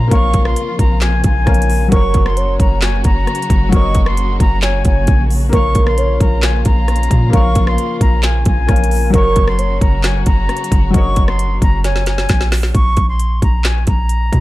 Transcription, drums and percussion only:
0.11 kick, closed hi-hat
0.34 kick, closed hi-hat
0.45 cross-stick
0.56 closed hi-hat
0.79 kick, closed hi-hat
1.01 snare, clap, closed hi-hat
1.24 kick, closed hi-hat
1.47 kick, cross-stick, closed hi-hat
1.54 closed hi-hat
1.62 closed hi-hat
1.70 open hi-hat
1.92 kick, closed hi-hat
2.14 kick, closed hi-hat
2.26 cross-stick
2.37 closed hi-hat
2.60 kick, closed hi-hat
2.82 snare, clap, closed hi-hat
3.04 kick, closed hi-hat
3.27 cross-stick, closed hi-hat
3.35 closed hi-hat
3.42 closed hi-hat
3.50 kick, closed hi-hat
3.72 kick, closed hi-hat
3.95 kick, closed hi-hat
4.06 cross-stick
4.17 closed hi-hat
4.40 kick, closed hi-hat
4.62 snare, clap, closed hi-hat
4.85 kick, closed hi-hat
5.07 kick, closed hi-hat
5.30 open hi-hat
5.53 kick, closed hi-hat
5.75 kick, closed hi-hat
5.87 cross-stick
5.98 closed hi-hat
6.20 kick, closed hi-hat
6.42 snare, clap, closed hi-hat
6.65 kick, closed hi-hat
6.88 cross-stick, closed hi-hat
6.96 closed hi-hat
7.03 closed hi-hat
7.11 kick, closed hi-hat
7.33 kick, closed hi-hat
7.55 kick, closed hi-hat
7.67 cross-stick
7.78 closed hi-hat
8.01 kick, closed hi-hat
8.23 snare, clap, closed hi-hat
8.45 kick, closed hi-hat
8.69 kick, cross-stick, closed hi-hat
8.76 closed hi-hat
8.84 closed hi-hat
8.91 open hi-hat
9.14 kick, closed hi-hat
9.36 kick, closed hi-hat
9.48 cross-stick
9.59 closed hi-hat
9.81 kick, closed hi-hat
10.03 snare, clap, closed hi-hat
10.26 kick, closed hi-hat
10.49 cross-stick, closed hi-hat
10.57 closed hi-hat
10.64 closed hi-hat
10.72 kick, closed hi-hat
10.94 kick, closed hi-hat
11.16 kick, closed hi-hat
11.28 cross-stick
11.39 closed hi-hat
11.62 kick, closed hi-hat
11.84 snare, closed hi-hat
11.96 snare
12.06 snare, closed hi-hat
12.18 snare
12.29 kick, snare, closed hi-hat
12.41 snare
12.52 snare, open hi-hat
12.63 snare
12.75 kick, closed hi-hat
12.97 kick, closed hi-hat
13.20 closed hi-hat
13.42 kick, closed hi-hat
13.64 snare, clap, closed hi-hat
13.87 kick, closed hi-hat
14.09 closed hi-hat
14.33 kick, closed hi-hat

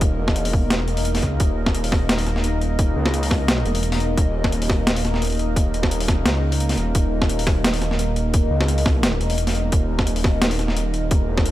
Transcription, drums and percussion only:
0.01 kick, closed hi-hat
0.28 kick, snare
0.36 closed hi-hat
0.45 open hi-hat
0.53 kick
0.70 snare, closed hi-hat
0.80 snare
0.88 closed hi-hat
0.97 open hi-hat
1.05 closed hi-hat
1.15 snare, open hi-hat
1.22 kick, closed hi-hat
1.40 kick, closed hi-hat
1.66 kick, snare
1.75 closed hi-hat
1.84 open hi-hat
1.92 kick, snare
2.09 snare, closed hi-hat
2.18 open hi-hat
2.26 snare, closed hi-hat
2.36 snare
2.44 closed hi-hat
2.61 closed hi-hat
2.79 kick, closed hi-hat
3.06 snare
3.14 closed hi-hat
3.23 open hi-hat
3.31 kick, snare
3.48 snare, closed hi-hat
3.58 snare
3.66 closed hi-hat
3.75 open hi-hat
3.83 closed hi-hat
3.92 snare, open hi-hat
4.00 closed hi-hat
4.17 kick, closed hi-hat
4.44 kick, snare
4.52 closed hi-hat
4.62 open hi-hat
4.70 kick, snare
4.87 snare, closed hi-hat
4.96 open hi-hat
5.05 snare, closed hi-hat
5.14 snare
5.22 closed hi-hat
5.25 closed hi-hat
5.27 closed hi-hat
5.30 closed hi-hat
5.32 closed hi-hat
5.35 closed hi-hat
5.37 closed hi-hat
5.39 closed hi-hat
5.56 kick, closed hi-hat
5.74 closed hi-hat
5.83 kick, snare
5.91 closed hi-hat
6.00 open hi-hat
6.08 kick, snare, closed hi-hat
6.26 snare, closed hi-hat
6.35 snare
6.52 open hi-hat
6.60 closed hi-hat
6.69 snare, open hi-hat
6.78 closed hi-hat
6.95 kick, closed hi-hat
7.22 kick, snare
7.29 closed hi-hat
7.39 open hi-hat
7.47 kick, snare
7.64 snare, closed hi-hat
7.74 open hi-hat
7.82 snare, closed hi-hat
7.91 snare
7.99 closed hi-hat
8.16 closed hi-hat
8.34 kick, closed hi-hat
8.61 snare
8.68 closed hi-hat
8.78 open hi-hat
8.86 kick, snare
9.03 snare, closed hi-hat
9.13 snare
9.21 closed hi-hat
9.30 open hi-hat
9.38 closed hi-hat
9.47 snare, open hi-hat
9.55 closed hi-hat
9.72 kick, closed hi-hat
9.99 kick, snare
10.07 closed hi-hat
10.16 open hi-hat
10.24 kick, snare
10.42 snare, closed hi-hat
10.51 open hi-hat
10.59 snare, closed hi-hat
10.68 snare
10.77 closed hi-hat
10.94 closed hi-hat
11.11 kick, closed hi-hat
11.37 kick, snare
11.46 closed hi-hat

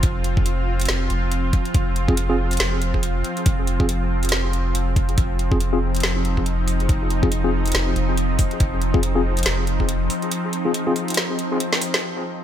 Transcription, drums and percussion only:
0.03 kick, closed hi-hat
0.24 closed hi-hat
0.37 kick
0.46 closed hi-hat
0.80 closed hi-hat
0.81 closed hi-hat
0.85 snare, closed hi-hat
0.89 closed hi-hat
1.10 closed hi-hat
1.32 closed hi-hat
1.53 kick, closed hi-hat
1.65 closed hi-hat
1.74 kick, closed hi-hat
1.96 closed hi-hat
2.08 kick
2.17 closed hi-hat
2.51 closed hi-hat
2.53 closed hi-hat
2.57 snare, closed hi-hat
2.60 closed hi-hat
2.82 closed hi-hat
2.94 kick
3.03 closed hi-hat
3.24 closed hi-hat
3.37 closed hi-hat
3.46 kick, closed hi-hat
3.67 closed hi-hat
3.80 kick
3.89 closed hi-hat
4.23 closed hi-hat
4.25 closed hi-hat
4.29 snare, closed hi-hat
4.32 closed hi-hat
4.53 closed hi-hat
4.75 closed hi-hat
4.96 kick, closed hi-hat
5.09 closed hi-hat
5.18 kick, closed hi-hat
5.39 closed hi-hat
5.52 kick
5.60 closed hi-hat
5.95 closed hi-hat
5.96 closed hi-hat
6.00 snare, closed hi-hat
6.03 closed hi-hat
6.25 closed hi-hat
6.37 kick
6.46 closed hi-hat
6.68 open hi-hat
6.80 closed hi-hat
6.89 kick, closed hi-hat
7.10 closed hi-hat
7.23 kick
7.32 closed hi-hat
7.66 closed hi-hat
7.67 closed hi-hat
7.72 snare, closed hi-hat
7.75 closed hi-hat
7.96 closed hi-hat
8.17 closed hi-hat
8.39 kick, open hi-hat
8.51 closed hi-hat
8.60 kick, closed hi-hat
8.82 closed hi-hat
8.94 kick
9.03 closed hi-hat
9.37 closed hi-hat
9.39 closed hi-hat
9.43 snare, closed hi-hat
9.46 closed hi-hat
9.67 closed hi-hat
9.80 kick
9.89 closed hi-hat
10.10 open hi-hat
10.22 closed hi-hat
10.31 closed hi-hat
10.53 closed hi-hat
10.74 closed hi-hat
10.96 open hi-hat
11.08 closed hi-hat
11.10 closed hi-hat
11.14 snare, closed hi-hat
11.17 closed hi-hat
11.39 closed hi-hat
11.60 closed hi-hat
11.73 snare
11.81 open hi-hat
11.94 snare, closed hi-hat

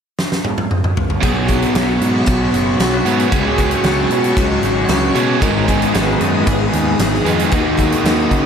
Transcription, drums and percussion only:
0.19 snare
0.32 snare
0.45 high tom
0.58 high tom
0.71 mid tom
0.84 mid tom
0.97 floor tom
1.10 floor tom
1.23 kick, closed hi-hat
1.49 kick, closed hi-hat
1.62 closed hi-hat
1.75 snare, closed hi-hat
2.02 closed hi-hat
2.28 kick, closed hi-hat
2.54 closed hi-hat
2.80 snare, closed hi-hat
3.06 closed hi-hat
3.20 closed hi-hat
3.32 kick, closed hi-hat
3.58 kick, closed hi-hat
3.71 closed hi-hat
3.84 snare, closed hi-hat
4.11 closed hi-hat
4.24 closed hi-hat
4.37 kick, closed hi-hat
4.63 closed hi-hat
4.88 snare, closed hi-hat
5.15 closed hi-hat
5.42 kick, closed hi-hat
5.68 kick, closed hi-hat
5.82 closed hi-hat
5.95 snare, closed hi-hat
6.21 closed hi-hat
6.47 kick, closed hi-hat
6.73 closed hi-hat
6.99 snare, closed hi-hat
7.14 snare
7.26 closed hi-hat
7.39 closed hi-hat
7.52 kick, closed hi-hat
7.79 kick, closed hi-hat
7.92 closed hi-hat
8.05 snare, closed hi-hat
8.31 kick, closed hi-hat

